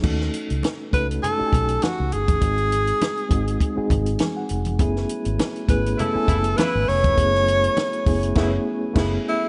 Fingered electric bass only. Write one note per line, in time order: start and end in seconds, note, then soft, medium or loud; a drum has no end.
0.04 0.28 D#2 loud
0.51 0.62 C#2 medium
0.94 1.18 C#2 medium
1.41 muted fingered electric bass stroke soft
1.53 1.77 B1 medium
2.00 2.11 C#2 medium
2.13 2.38 G1 medium
2.42 2.91 G#1 loud
3.31 3.56 G#1 medium
3.78 muted fingered electric bass stroke soft
3.90 4.15 G#1 medium
4.51 4.79 F1 medium
4.79 5.04 F#1 loud
5.26 5.37 G#1 medium
5.69 5.93 G#1 medium
6.15 muted fingered electric bass stroke soft
6.28 6.53 F#1 medium
6.75 6.86 G#1 medium
6.89 7.13 F1 medium
7.18 7.67 F#1 loud
8.06 8.31 F#1 medium
8.36 8.57 F#1 loud
8.96 9.17 F#1 loud